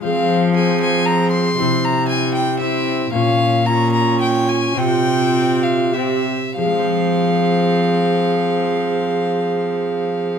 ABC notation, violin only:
X:1
M:3/4
L:1/8
Q:1/4=106
K:Fm
V:1 name="Violin"
f2 a a b c'- | c' b a g =e2 | f2 b b g a | g3 f =e2 |
f6- | f6 |]